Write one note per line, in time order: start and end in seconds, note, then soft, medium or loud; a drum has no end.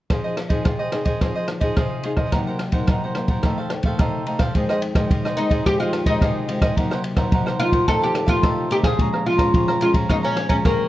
0.10 0.63 F3 medium
0.10 0.37 C4 soft
0.10 0.37 D#4 soft
0.10 0.23 F4 soft
0.10 0.23 G#4 soft
0.10 0.37 G#4 medium
0.10 0.24 C5 soft
0.10 0.23 D#5 soft
0.10 kick medium
0.10 cross-stick medium
0.10 ride soft
0.24 0.36 G#4 soft
0.24 0.36 C5 soft
0.24 0.36 D#5 medium
0.36 muted cavaquinho stroke soft
0.36 cross-stick medium
0.36 ride soft
0.49 0.89 C4 medium
0.49 0.89 D#4 soft
0.49 0.64 G#4 soft
0.49 0.89 G#4 medium
0.49 0.64 C5 soft
0.49 0.63 D#5 medium
0.49 kick medium
0.49 ride soft
0.65 1.19 C3 medium
0.65 0.78 F4 soft
0.65 0.79 G#4 soft
0.65 0.79 C5 soft
0.65 0.78 D#5 soft
0.65 kick medium
0.65 cross-stick medium
0.65 ride soft
0.79 1.06 G#4 soft
0.79 1.04 C5 medium
0.79 1.04 D#5 medium
0.92 1.10 C4 soft
0.92 1.10 D#4 soft
0.92 1.10 G#4 medium
0.92 cross-stick medium
0.92 ride soft
1.05 1.20 G#4 soft
1.05 1.19 C5 medium
1.05 1.19 D#5 medium
1.05 kick medium
1.05 ride soft
1.21 1.75 F3 medium
1.21 1.59 C4 soft
1.21 1.60 D#4 soft
1.21 1.34 F4 soft
1.21 1.34 G#4 soft
1.21 1.60 G#4 soft
1.21 1.35 C5 soft
1.21 1.34 D#5 soft
1.21 kick medium
1.21 cross-stick medium
1.21 ride soft
1.35 1.47 G#4 soft
1.35 1.47 C5 medium
1.35 1.48 D#5 medium
1.48 muted cavaquinho stroke soft
1.48 cross-stick medium
1.48 ride soft
1.60 2.00 C4 soft
1.60 2.00 D#4 soft
1.60 1.76 G#4 soft
1.60 2.01 G#4 medium
1.60 1.75 C5 medium
1.60 1.75 D#5 medium
1.60 kick medium
1.60 ride soft
1.77 2.30 C3 medium
1.77 2.03 F4 medium
1.77 2.03 G#4 medium
1.77 2.04 C5 medium
1.77 2.04 D#5 medium
1.77 kick medium
1.77 cross-stick medium
1.77 ride soft
2.03 2.21 C4 soft
2.03 2.22 D#4 soft
2.03 2.17 F4 soft
2.03 2.17 G#4 soft
2.03 2.22 G#4 soft
2.03 2.17 C5 soft
2.03 2.16 D#5 soft
2.03 ride soft
2.17 2.32 G#4 soft
2.17 2.31 C5 medium
2.17 2.31 D#5 medium
2.17 kick medium
2.17 cross-stick medium
2.17 ride soft
2.32 2.86 C3 medium
2.32 2.71 F#3 soft
2.32 2.71 A#3 soft
2.32 2.45 D#4 soft
2.32 2.71 D#4 soft
2.32 2.46 A#4 soft
2.32 2.46 C5 soft
2.32 2.46 F#5 soft
2.32 kick medium
2.32 cross-stick medium
2.32 ride soft
2.47 2.59 A#4 soft
2.47 2.59 C5 soft
2.47 2.60 F#5 medium
2.59 muted cavaquinho stroke soft
2.59 cross-stick medium
2.59 ride soft
2.72 3.11 F#3 medium
2.72 3.12 A#3 medium
2.72 3.12 D#4 medium
2.72 2.87 A#4 soft
2.72 2.87 C5 medium
2.72 2.87 F#5 medium
2.72 kick medium
2.72 ride soft
2.87 3.42 C3 medium
2.87 3.01 D#4 soft
2.87 3.02 A#4 soft
2.87 3.02 C5 soft
2.87 3.02 F#5 soft
2.87 kick medium
2.87 cross-stick medium
2.87 ride soft
3.04 3.29 A#4 soft
3.04 3.29 C5 medium
3.04 3.28 F#5 medium
3.15 3.40 F#3 medium
3.15 3.40 A#3 soft
3.15 3.40 D#4 medium
3.15 cross-stick medium
3.15 ride soft
3.28 3.43 A#4 soft
3.28 3.43 C5 medium
3.28 3.42 F#5 medium
3.28 kick medium
3.28 ride soft
3.43 3.97 F2 medium
3.43 3.81 D#3 medium
3.43 3.82 A3 medium
3.43 3.82 C4 medium
3.43 3.57 D#4 soft
3.43 3.57 A4 soft
3.43 3.58 C5 soft
3.43 3.57 F5 soft
3.43 kick medium
3.43 cross-stick medium
3.43 ride soft
3.58 3.71 A4 soft
3.58 3.71 C5 medium
3.58 3.71 F5 medium
3.70 muted cavaquinho stroke soft
3.70 cross-stick medium
3.70 ride soft
3.83 4.22 D#3 medium
3.83 4.22 A3 soft
3.83 4.22 C4 medium
3.83 3.99 C5 medium
3.83 3.98 F5 medium
3.83 kick medium
3.83 ride soft
3.87 3.99 A4 medium
3.99 4.52 C3 medium
3.99 4.26 D#4 medium
3.99 4.27 A4 medium
3.99 4.27 C5 medium
3.99 4.27 F5 medium
3.99 kick medium
3.99 cross-stick medium
3.99 ride soft
4.26 4.43 D#3 soft
4.26 4.44 A3 soft
4.26 4.44 C4 soft
4.26 4.40 D#4 soft
4.26 4.40 A4 soft
4.26 4.39 C5 soft
4.26 4.38 F5 soft
4.26 ride soft
4.39 4.54 A4 medium
4.39 4.54 C5 medium
4.39 4.53 F5 medium
4.39 kick medium
4.39 cross-stick medium
4.39 ride soft
4.55 5.08 F2 medium
4.55 4.92 D#3 medium
4.55 4.92 G#3 soft
4.55 4.92 C4 medium
4.55 4.68 F4 soft
4.55 4.68 G#4 soft
4.55 4.69 C5 soft
4.55 4.68 D#5 soft
4.55 kick medium
4.55 ride soft
4.69 4.82 G#4 soft
4.69 4.82 C5 medium
4.69 4.82 D#5 medium
4.69 cross-stick medium
4.82 muted cavaquinho stroke soft
4.82 ride soft
4.95 5.33 D#3 medium
4.95 5.33 G#3 medium
4.95 5.34 C4 medium
4.95 5.09 G#4 soft
4.95 5.09 C5 soft
4.95 5.09 D#5 medium
4.95 kick medium
4.95 cross-stick medium
4.95 ride soft
5.10 5.63 C3 medium
5.10 5.23 F4 soft
5.10 5.23 G#4 soft
5.10 5.24 C5 medium
5.10 5.24 D#5 soft
5.10 kick medium
5.10 ride soft
5.25 5.50 G#4 soft
5.25 5.50 C5 medium
5.25 5.48 D#5 medium
5.25 cross-stick medium
5.37 5.54 D#3 soft
5.37 5.55 G#3 soft
5.37 5.55 C4 medium
5.37 5.66 D#4 medium
5.37 ride soft
5.50 5.64 G#4 soft
5.50 5.64 C5 medium
5.50 5.64 D#5 medium
5.50 kick medium
5.50 ride soft
5.65 6.19 F2 medium
5.65 6.03 D#3 medium
5.65 6.03 G#3 medium
5.65 6.04 C4 medium
5.65 5.78 F4 soft
5.65 5.79 G4 medium
5.65 5.79 G#4 soft
5.65 5.79 C5 soft
5.65 5.79 D#5 soft
5.65 kick medium
5.65 cross-stick medium
5.65 ride soft
5.80 6.06 F4 medium
5.80 5.92 G#4 soft
5.80 5.92 C5 medium
5.80 5.93 D#5 medium
5.93 muted cavaquinho stroke soft
5.93 cross-stick medium
5.93 ride soft
6.06 6.44 D#3 medium
6.06 6.44 G#3 medium
6.06 6.44 C4 medium
6.06 6.46 D#4 medium
6.06 6.21 G#4 medium
6.06 6.20 C5 medium
6.06 6.20 D#5 medium
6.06 kick medium
6.06 ride soft
6.21 6.74 C3 medium
6.21 6.47 F4 medium
6.21 6.47 G#4 medium
6.21 6.48 C5 medium
6.21 6.48 D#5 medium
6.21 kick medium
6.21 cross-stick medium
6.21 ride soft
6.48 6.72 D#3 medium
6.48 6.73 G#3 soft
6.48 6.73 C4 medium
6.48 6.61 F4 soft
6.48 6.62 G#4 soft
6.48 6.61 C5 soft
6.48 6.60 D#5 soft
6.48 ride soft
6.61 6.76 G#4 medium
6.61 6.75 C5 medium
6.61 6.75 D#5 medium
6.61 kick medium
6.61 cross-stick medium
6.61 ride soft
6.76 7.30 C3 medium
6.76 7.14 F#3 soft
6.76 7.14 A#3 medium
6.76 6.89 D#4 soft
6.76 7.15 D#4 medium
6.76 6.90 A#4 soft
6.76 6.90 C5 soft
6.76 6.90 F#5 soft
6.76 kick medium
6.76 ride soft
6.91 7.03 A#4 soft
6.91 7.03 C5 medium
6.91 7.03 F#5 medium
6.91 cross-stick medium
7.03 muted cavaquinho stroke soft
7.03 ride soft
7.16 7.55 F#3 medium
7.16 7.55 A#3 medium
7.16 7.55 D#4 medium
7.16 7.31 A#4 medium
7.16 7.31 C5 medium
7.16 7.30 F#5 medium
7.16 kick medium
7.16 cross-stick medium
7.16 ride soft
7.32 7.86 C3 medium
7.32 7.45 D#4 soft
7.32 7.46 A#4 soft
7.32 7.46 C5 soft
7.32 7.45 F#5 medium
7.32 kick medium
7.32 ride soft
7.46 7.73 A#4 medium
7.46 7.72 C5 medium
7.46 7.71 F#5 medium
7.46 cross-stick medium
7.59 7.83 F#3 soft
7.59 7.83 A#3 soft
7.59 7.83 D#4 medium
7.59 7.88 F4 medium
7.59 ride soft
7.72 7.87 A#4 soft
7.72 7.87 C5 medium
7.72 7.86 F#5 medium
7.72 kick medium
7.72 ride soft
7.88 8.41 F2 medium
7.88 8.25 D#3 medium
7.88 8.25 A3 medium
7.88 8.25 C4 medium
7.88 8.01 D#4 soft
7.88 8.02 A4 loud
7.88 8.01 A4 soft
7.88 8.01 C5 soft
7.88 8.01 F5 medium
7.88 kick medium
7.88 cross-stick medium
7.88 ride soft
8.02 8.28 G4 medium
8.02 8.13 A4 medium
8.02 8.14 C5 medium
8.02 8.14 F5 medium
8.14 muted cavaquinho stroke soft
8.14 cross-stick medium
8.14 ride soft
8.26 8.66 D#3 medium
8.26 8.66 A3 soft
8.26 8.66 C4 medium
8.26 8.68 F4 medium
8.26 8.42 A4 medium
8.26 8.41 C5 medium
8.26 8.41 F5 medium
8.26 kick medium
8.26 ride soft
8.42 8.96 C3 medium
8.42 8.69 D#4 medium
8.42 8.70 A4 medium
8.42 8.70 C5 medium
8.42 8.70 F5 medium
8.42 kick medium
8.42 cross-stick medium
8.42 ride soft
8.70 8.87 D#3 medium
8.70 8.87 A3 soft
8.70 8.87 C4 medium
8.70 8.84 D#4 soft
8.70 8.77 G4 medium
8.70 8.84 A4 soft
8.70 8.83 C5 soft
8.70 8.83 F5 soft
8.70 ride soft
8.84 9.26 G#4 medium
8.84 8.98 A4 medium
8.84 8.98 C5 medium
8.84 8.97 F5 medium
8.84 kick medium
8.84 cross-stick medium
8.84 ride soft
8.98 9.51 A#2 medium
8.98 9.36 F3 medium
8.98 9.36 G#3 medium
8.98 9.36 C#4 medium
8.98 9.12 G#4 soft
8.98 9.12 C#5 soft
8.98 9.12 F5 soft
8.98 9.11 A#5 soft
8.98 kick medium
8.98 ride soft
9.13 9.25 C#5 soft
9.13 9.25 F5 medium
9.13 9.25 A#5 medium
9.13 cross-stick medium
9.26 9.81 F4 medium
9.26 ride soft
9.38 9.77 F3 medium
9.38 9.77 G#3 medium
9.38 9.77 C#4 medium
9.38 9.53 C#5 soft
9.38 9.53 F5 medium
9.38 9.52 A#5 medium
9.38 kick medium
9.38 cross-stick medium
9.38 ride soft
9.54 10.07 F2 medium
9.54 9.67 G#4 soft
9.54 9.67 C#5 soft
9.54 9.67 F5 soft
9.54 9.67 A#5 soft
9.54 kick medium
9.54 ride soft
9.68 9.94 C#5 medium
9.68 9.94 F5 medium
9.68 9.92 A#5 medium
9.68 cross-stick medium
9.81 10.05 F3 medium
9.81 10.05 G#3 soft
9.81 10.05 C#4 medium
9.81 9.90 F4 medium
9.81 ride soft
9.94 10.09 C#5 soft
9.94 10.08 F5 medium
9.94 10.08 A#5 medium
9.94 kick medium
9.94 ride soft
10.09 10.63 A#2 medium
10.09 10.47 F3 soft
10.09 10.47 G#3 soft
10.09 10.48 C#4 medium
10.09 10.16 D#4 medium
10.09 10.22 G#4 soft
10.09 10.23 C#5 soft
10.09 10.23 F5 medium
10.09 10.22 A#5 soft
10.09 kick medium
10.09 cross-stick medium
10.09 ride soft
10.23 10.48 C#4 medium
10.23 10.35 C#5 soft
10.23 10.35 F5 medium
10.23 10.35 A#5 medium
10.35 muted cavaquinho stroke soft
10.35 cross-stick medium
10.35 ride soft
10.49 10.88 F3 medium
10.49 10.88 G#3 soft
10.49 10.54 C#4 medium
10.49 10.88 C#4 medium
10.49 10.64 C#5 medium
10.49 10.63 F5 medium
10.49 10.63 A#5 medium
10.49 kick medium
10.49 ride soft
10.65 10.88 F2 medium
10.65 10.88 A#3 medium
10.65 10.88 G#4 medium
10.65 10.88 C#5 medium
10.65 10.88 F5 medium
10.65 10.88 A#5 medium
10.65 kick medium
10.65 cross-stick medium
10.65 ride soft